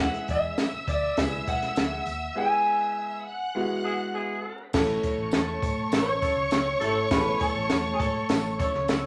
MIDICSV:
0, 0, Header, 1, 9, 480
1, 0, Start_track
1, 0, Key_signature, 3, "major"
1, 0, Tempo, 593472
1, 1913, Time_signature, 4, 2, 24, 8
1, 7329, End_track
2, 0, Start_track
2, 0, Title_t, "Violin section"
2, 0, Program_c, 0, 48
2, 0, Note_on_c, 0, 76, 86
2, 0, Note_on_c, 0, 88, 94
2, 2602, Note_off_c, 0, 76, 0
2, 2603, Note_off_c, 0, 88, 0
2, 2635, Note_on_c, 0, 78, 75
2, 2638, Note_on_c, 0, 90, 79
2, 3575, Note_off_c, 0, 78, 0
2, 3577, Note_off_c, 0, 90, 0
2, 3841, Note_on_c, 0, 73, 103
2, 3843, Note_on_c, 0, 85, 107
2, 7329, Note_off_c, 0, 73, 0
2, 7329, Note_off_c, 0, 85, 0
2, 7329, End_track
3, 0, Start_track
3, 0, Title_t, "Clean electric guitar"
3, 0, Program_c, 1, 27
3, 8, Note_on_c, 1, 78, 86
3, 244, Note_off_c, 1, 78, 0
3, 247, Note_on_c, 1, 76, 85
3, 716, Note_off_c, 1, 76, 0
3, 719, Note_on_c, 1, 74, 83
3, 951, Note_off_c, 1, 74, 0
3, 954, Note_on_c, 1, 76, 83
3, 1200, Note_off_c, 1, 76, 0
3, 1203, Note_on_c, 1, 78, 104
3, 1922, Note_off_c, 1, 78, 0
3, 1925, Note_on_c, 1, 80, 99
3, 2846, Note_off_c, 1, 80, 0
3, 4328, Note_on_c, 1, 69, 82
3, 4807, Note_off_c, 1, 69, 0
3, 4811, Note_on_c, 1, 73, 105
3, 5731, Note_off_c, 1, 73, 0
3, 5752, Note_on_c, 1, 71, 95
3, 5977, Note_off_c, 1, 71, 0
3, 5990, Note_on_c, 1, 69, 88
3, 6416, Note_off_c, 1, 69, 0
3, 6419, Note_on_c, 1, 68, 66
3, 6462, Note_off_c, 1, 68, 0
3, 6465, Note_on_c, 1, 69, 92
3, 6961, Note_off_c, 1, 69, 0
3, 6964, Note_on_c, 1, 73, 87
3, 7329, Note_off_c, 1, 73, 0
3, 7329, End_track
4, 0, Start_track
4, 0, Title_t, "Grand piano"
4, 0, Program_c, 2, 0
4, 0, Note_on_c, 2, 56, 79
4, 0, Note_on_c, 2, 59, 77
4, 0, Note_on_c, 2, 64, 79
4, 0, Note_on_c, 2, 68, 87
4, 517, Note_off_c, 2, 56, 0
4, 518, Note_off_c, 2, 59, 0
4, 521, Note_off_c, 2, 64, 0
4, 522, Note_off_c, 2, 68, 0
4, 944, Note_on_c, 2, 56, 69
4, 951, Note_on_c, 2, 59, 62
4, 953, Note_on_c, 2, 64, 63
4, 956, Note_on_c, 2, 68, 80
4, 1644, Note_off_c, 2, 56, 0
4, 1648, Note_off_c, 2, 59, 0
4, 1649, Note_off_c, 2, 64, 0
4, 1650, Note_off_c, 2, 68, 0
4, 1902, Note_on_c, 2, 56, 69
4, 1904, Note_on_c, 2, 59, 72
4, 1911, Note_on_c, 2, 68, 80
4, 1912, Note_on_c, 2, 64, 64
4, 2603, Note_off_c, 2, 56, 0
4, 2604, Note_off_c, 2, 59, 0
4, 2608, Note_off_c, 2, 64, 0
4, 2608, Note_off_c, 2, 68, 0
4, 2869, Note_on_c, 2, 56, 89
4, 2873, Note_on_c, 2, 59, 84
4, 2873, Note_on_c, 2, 64, 77
4, 2883, Note_on_c, 2, 66, 93
4, 3567, Note_off_c, 2, 56, 0
4, 3569, Note_off_c, 2, 59, 0
4, 3569, Note_off_c, 2, 64, 0
4, 3574, Note_off_c, 2, 66, 0
4, 3834, Note_on_c, 2, 57, 93
4, 3837, Note_on_c, 2, 61, 76
4, 3844, Note_on_c, 2, 64, 81
4, 3847, Note_on_c, 2, 69, 102
4, 4530, Note_off_c, 2, 57, 0
4, 4531, Note_off_c, 2, 61, 0
4, 4535, Note_off_c, 2, 64, 0
4, 4536, Note_off_c, 2, 69, 0
4, 5505, Note_on_c, 2, 57, 79
4, 5513, Note_on_c, 2, 61, 76
4, 5514, Note_on_c, 2, 64, 75
4, 5522, Note_on_c, 2, 69, 90
4, 5684, Note_off_c, 2, 57, 0
4, 5688, Note_off_c, 2, 61, 0
4, 5688, Note_off_c, 2, 64, 0
4, 5692, Note_off_c, 2, 69, 0
4, 5749, Note_on_c, 2, 57, 71
4, 5751, Note_on_c, 2, 61, 67
4, 5759, Note_on_c, 2, 64, 70
4, 5763, Note_on_c, 2, 68, 67
4, 5811, Note_off_c, 2, 68, 0
4, 5817, Note_on_c, 2, 69, 87
4, 6449, Note_off_c, 2, 57, 0
4, 6450, Note_off_c, 2, 61, 0
4, 6454, Note_off_c, 2, 64, 0
4, 6482, Note_off_c, 2, 69, 0
4, 7329, End_track
5, 0, Start_track
5, 0, Title_t, "Horn section"
5, 0, Program_c, 3, 61
5, 3110, Note_on_c, 3, 68, 106
5, 3111, Note_on_c, 3, 64, 94
5, 3112, Note_on_c, 3, 59, 94
5, 3187, Note_off_c, 3, 68, 0
5, 3188, Note_off_c, 3, 64, 0
5, 3189, Note_off_c, 3, 59, 0
5, 3347, Note_on_c, 3, 59, 94
5, 3348, Note_on_c, 3, 68, 110
5, 3350, Note_on_c, 3, 64, 93
5, 3806, Note_off_c, 3, 59, 0
5, 3807, Note_off_c, 3, 64, 0
5, 3807, Note_off_c, 3, 68, 0
5, 4786, Note_on_c, 3, 64, 83
5, 4787, Note_on_c, 3, 69, 88
5, 4788, Note_on_c, 3, 61, 80
5, 4891, Note_off_c, 3, 64, 0
5, 4892, Note_off_c, 3, 69, 0
5, 4893, Note_off_c, 3, 61, 0
5, 5031, Note_on_c, 3, 69, 93
5, 5032, Note_on_c, 3, 64, 77
5, 5033, Note_on_c, 3, 61, 88
5, 5134, Note_off_c, 3, 69, 0
5, 5135, Note_off_c, 3, 61, 0
5, 5135, Note_off_c, 3, 64, 0
5, 5259, Note_on_c, 3, 61, 81
5, 5261, Note_on_c, 3, 64, 87
5, 5264, Note_on_c, 3, 69, 91
5, 5368, Note_off_c, 3, 61, 0
5, 5368, Note_off_c, 3, 64, 0
5, 5371, Note_off_c, 3, 69, 0
5, 5499, Note_on_c, 3, 61, 98
5, 5502, Note_on_c, 3, 64, 92
5, 5502, Note_on_c, 3, 69, 103
5, 5657, Note_off_c, 3, 61, 0
5, 5659, Note_off_c, 3, 64, 0
5, 5659, Note_off_c, 3, 69, 0
5, 6705, Note_on_c, 3, 61, 79
5, 6706, Note_on_c, 3, 69, 89
5, 6707, Note_on_c, 3, 64, 84
5, 6812, Note_off_c, 3, 61, 0
5, 6812, Note_off_c, 3, 69, 0
5, 6813, Note_off_c, 3, 64, 0
5, 6946, Note_on_c, 3, 64, 88
5, 6947, Note_on_c, 3, 69, 93
5, 6949, Note_on_c, 3, 61, 80
5, 7052, Note_off_c, 3, 64, 0
5, 7053, Note_off_c, 3, 69, 0
5, 7054, Note_off_c, 3, 61, 0
5, 7186, Note_on_c, 3, 61, 85
5, 7189, Note_on_c, 3, 64, 90
5, 7190, Note_on_c, 3, 69, 94
5, 7292, Note_off_c, 3, 61, 0
5, 7294, Note_off_c, 3, 64, 0
5, 7294, Note_off_c, 3, 69, 0
5, 7329, End_track
6, 0, Start_track
6, 0, Title_t, "Vibraphone"
6, 0, Program_c, 4, 11
6, 4332, Note_on_c, 4, 57, 74
6, 4771, Note_off_c, 4, 57, 0
6, 4813, Note_on_c, 4, 61, 92
6, 5732, Note_off_c, 4, 61, 0
6, 5757, Note_on_c, 4, 59, 89
6, 5979, Note_off_c, 4, 59, 0
6, 5996, Note_on_c, 4, 57, 70
6, 6390, Note_off_c, 4, 57, 0
6, 6420, Note_on_c, 4, 56, 56
6, 6472, Note_off_c, 4, 56, 0
6, 6479, Note_on_c, 4, 57, 75
6, 6925, Note_off_c, 4, 57, 0
6, 6962, Note_on_c, 4, 61, 76
6, 7329, Note_off_c, 4, 61, 0
6, 7329, End_track
7, 0, Start_track
7, 0, Title_t, "Fingered electric bass"
7, 0, Program_c, 5, 33
7, 0, Note_on_c, 5, 40, 98
7, 98, Note_off_c, 5, 40, 0
7, 236, Note_on_c, 5, 40, 89
7, 407, Note_off_c, 5, 40, 0
7, 708, Note_on_c, 5, 38, 81
7, 883, Note_off_c, 5, 38, 0
7, 950, Note_on_c, 5, 37, 95
7, 1124, Note_off_c, 5, 37, 0
7, 1194, Note_on_c, 5, 35, 90
7, 1367, Note_off_c, 5, 35, 0
7, 1430, Note_on_c, 5, 38, 86
7, 1604, Note_off_c, 5, 38, 0
7, 1668, Note_on_c, 5, 39, 88
7, 1843, Note_off_c, 5, 39, 0
7, 3834, Note_on_c, 5, 33, 116
7, 4007, Note_off_c, 5, 33, 0
7, 4190, Note_on_c, 5, 33, 89
7, 4277, Note_off_c, 5, 33, 0
7, 4317, Note_on_c, 5, 40, 97
7, 4489, Note_off_c, 5, 40, 0
7, 4551, Note_on_c, 5, 45, 98
7, 4725, Note_off_c, 5, 45, 0
7, 4787, Note_on_c, 5, 33, 88
7, 5049, Note_off_c, 5, 33, 0
7, 5148, Note_on_c, 5, 37, 82
7, 5237, Note_off_c, 5, 37, 0
7, 5266, Note_on_c, 5, 37, 96
7, 5442, Note_off_c, 5, 37, 0
7, 5510, Note_on_c, 5, 32, 88
7, 5685, Note_off_c, 5, 32, 0
7, 5751, Note_on_c, 5, 33, 116
7, 5925, Note_off_c, 5, 33, 0
7, 6108, Note_on_c, 5, 33, 98
7, 6197, Note_off_c, 5, 33, 0
7, 6231, Note_on_c, 5, 40, 87
7, 6406, Note_off_c, 5, 40, 0
7, 6468, Note_on_c, 5, 45, 103
7, 6644, Note_off_c, 5, 45, 0
7, 6715, Note_on_c, 5, 33, 91
7, 6975, Note_off_c, 5, 33, 0
7, 7078, Note_on_c, 5, 37, 97
7, 7164, Note_off_c, 5, 37, 0
7, 7195, Note_on_c, 5, 37, 94
7, 7329, Note_off_c, 5, 37, 0
7, 7329, End_track
8, 0, Start_track
8, 0, Title_t, "Muted fingered electric bass strokes"
8, 590, Note_on_c, 9, 29, 48
8, 671, Note_off_c, 9, 29, 0
8, 7329, End_track
9, 0, Start_track
9, 0, Title_t, "Drums"
9, 115, Note_on_c, 9, 42, 51
9, 196, Note_off_c, 9, 42, 0
9, 225, Note_on_c, 9, 42, 62
9, 233, Note_on_c, 9, 36, 81
9, 239, Note_on_c, 9, 54, 49
9, 306, Note_off_c, 9, 42, 0
9, 314, Note_off_c, 9, 36, 0
9, 320, Note_off_c, 9, 54, 0
9, 466, Note_on_c, 9, 54, 96
9, 468, Note_on_c, 9, 38, 110
9, 473, Note_on_c, 9, 42, 91
9, 547, Note_off_c, 9, 54, 0
9, 549, Note_off_c, 9, 38, 0
9, 553, Note_off_c, 9, 42, 0
9, 707, Note_on_c, 9, 36, 92
9, 710, Note_on_c, 9, 42, 78
9, 725, Note_on_c, 9, 54, 54
9, 788, Note_off_c, 9, 36, 0
9, 791, Note_off_c, 9, 42, 0
9, 806, Note_off_c, 9, 54, 0
9, 947, Note_on_c, 9, 42, 104
9, 951, Note_on_c, 9, 36, 84
9, 952, Note_on_c, 9, 38, 117
9, 962, Note_on_c, 9, 54, 97
9, 1028, Note_off_c, 9, 42, 0
9, 1032, Note_off_c, 9, 36, 0
9, 1033, Note_off_c, 9, 38, 0
9, 1043, Note_off_c, 9, 54, 0
9, 1192, Note_on_c, 9, 36, 92
9, 1193, Note_on_c, 9, 42, 65
9, 1195, Note_on_c, 9, 54, 60
9, 1273, Note_off_c, 9, 36, 0
9, 1273, Note_off_c, 9, 42, 0
9, 1276, Note_off_c, 9, 54, 0
9, 1313, Note_on_c, 9, 42, 59
9, 1314, Note_on_c, 9, 38, 36
9, 1394, Note_off_c, 9, 42, 0
9, 1395, Note_off_c, 9, 38, 0
9, 1423, Note_on_c, 9, 54, 101
9, 1427, Note_on_c, 9, 42, 90
9, 1435, Note_on_c, 9, 38, 107
9, 1504, Note_off_c, 9, 54, 0
9, 1508, Note_off_c, 9, 42, 0
9, 1516, Note_off_c, 9, 38, 0
9, 1663, Note_on_c, 9, 54, 55
9, 1669, Note_on_c, 9, 42, 77
9, 1744, Note_off_c, 9, 54, 0
9, 1750, Note_off_c, 9, 42, 0
9, 3827, Note_on_c, 9, 54, 100
9, 3831, Note_on_c, 9, 49, 94
9, 3833, Note_on_c, 9, 36, 102
9, 3835, Note_on_c, 9, 38, 105
9, 3908, Note_off_c, 9, 54, 0
9, 3912, Note_off_c, 9, 49, 0
9, 3914, Note_off_c, 9, 36, 0
9, 3915, Note_off_c, 9, 38, 0
9, 4071, Note_on_c, 9, 42, 67
9, 4074, Note_on_c, 9, 36, 84
9, 4075, Note_on_c, 9, 54, 50
9, 4152, Note_off_c, 9, 42, 0
9, 4155, Note_off_c, 9, 36, 0
9, 4156, Note_off_c, 9, 54, 0
9, 4298, Note_on_c, 9, 54, 102
9, 4310, Note_on_c, 9, 38, 117
9, 4315, Note_on_c, 9, 42, 93
9, 4379, Note_off_c, 9, 54, 0
9, 4391, Note_off_c, 9, 38, 0
9, 4396, Note_off_c, 9, 42, 0
9, 4549, Note_on_c, 9, 36, 99
9, 4552, Note_on_c, 9, 42, 77
9, 4555, Note_on_c, 9, 54, 58
9, 4630, Note_off_c, 9, 36, 0
9, 4633, Note_off_c, 9, 42, 0
9, 4636, Note_off_c, 9, 54, 0
9, 4786, Note_on_c, 9, 54, 102
9, 4790, Note_on_c, 9, 42, 106
9, 4795, Note_on_c, 9, 38, 127
9, 4866, Note_off_c, 9, 54, 0
9, 4871, Note_off_c, 9, 42, 0
9, 4876, Note_off_c, 9, 38, 0
9, 5030, Note_on_c, 9, 54, 63
9, 5032, Note_on_c, 9, 36, 91
9, 5034, Note_on_c, 9, 42, 69
9, 5110, Note_off_c, 9, 54, 0
9, 5113, Note_off_c, 9, 36, 0
9, 5115, Note_off_c, 9, 42, 0
9, 5263, Note_on_c, 9, 54, 102
9, 5266, Note_on_c, 9, 42, 94
9, 5274, Note_on_c, 9, 38, 104
9, 5344, Note_off_c, 9, 54, 0
9, 5347, Note_off_c, 9, 42, 0
9, 5355, Note_off_c, 9, 38, 0
9, 5508, Note_on_c, 9, 54, 57
9, 5511, Note_on_c, 9, 42, 81
9, 5588, Note_off_c, 9, 54, 0
9, 5592, Note_off_c, 9, 42, 0
9, 5750, Note_on_c, 9, 36, 102
9, 5750, Note_on_c, 9, 42, 85
9, 5750, Note_on_c, 9, 54, 94
9, 5752, Note_on_c, 9, 38, 114
9, 5831, Note_off_c, 9, 36, 0
9, 5831, Note_off_c, 9, 42, 0
9, 5831, Note_off_c, 9, 54, 0
9, 5833, Note_off_c, 9, 38, 0
9, 5984, Note_on_c, 9, 42, 65
9, 5991, Note_on_c, 9, 36, 89
9, 6000, Note_on_c, 9, 54, 54
9, 6065, Note_off_c, 9, 42, 0
9, 6072, Note_off_c, 9, 36, 0
9, 6081, Note_off_c, 9, 54, 0
9, 6225, Note_on_c, 9, 38, 112
9, 6225, Note_on_c, 9, 54, 93
9, 6230, Note_on_c, 9, 42, 91
9, 6306, Note_off_c, 9, 38, 0
9, 6306, Note_off_c, 9, 54, 0
9, 6311, Note_off_c, 9, 42, 0
9, 6467, Note_on_c, 9, 36, 98
9, 6468, Note_on_c, 9, 42, 75
9, 6482, Note_on_c, 9, 54, 57
9, 6548, Note_off_c, 9, 36, 0
9, 6549, Note_off_c, 9, 42, 0
9, 6563, Note_off_c, 9, 54, 0
9, 6705, Note_on_c, 9, 42, 111
9, 6711, Note_on_c, 9, 38, 115
9, 6714, Note_on_c, 9, 54, 108
9, 6786, Note_off_c, 9, 42, 0
9, 6791, Note_off_c, 9, 38, 0
9, 6795, Note_off_c, 9, 54, 0
9, 6952, Note_on_c, 9, 36, 95
9, 6953, Note_on_c, 9, 42, 69
9, 6954, Note_on_c, 9, 54, 60
9, 7032, Note_off_c, 9, 36, 0
9, 7033, Note_off_c, 9, 42, 0
9, 7035, Note_off_c, 9, 54, 0
9, 7071, Note_on_c, 9, 38, 37
9, 7152, Note_off_c, 9, 38, 0
9, 7184, Note_on_c, 9, 42, 91
9, 7186, Note_on_c, 9, 54, 101
9, 7191, Note_on_c, 9, 38, 111
9, 7265, Note_off_c, 9, 42, 0
9, 7267, Note_off_c, 9, 54, 0
9, 7272, Note_off_c, 9, 38, 0
9, 7329, End_track
0, 0, End_of_file